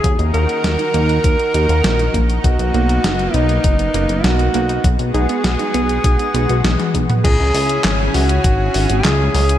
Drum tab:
CC |----------------|----------------|----------------|x---------------|
HH |xxxxxxxxxxxxxxxx|xxxxxxxxxxxxxxxx|xxxxxxxxxxxxxxxx|x-oxx-oxx-oxx-ox|
CP |----------------|----------------|----------------|----x-------x---|
SD |----o-------o---|----o-------o---|----o-------oo--|----o-------o---|
T1 |----------------|----------------|------------oo--|----------------|
T2 |----------------|----------------|---------------o|----------------|
BD |o-------o-----o-|o-------o-------|o-------o-----o-|o-------o-------|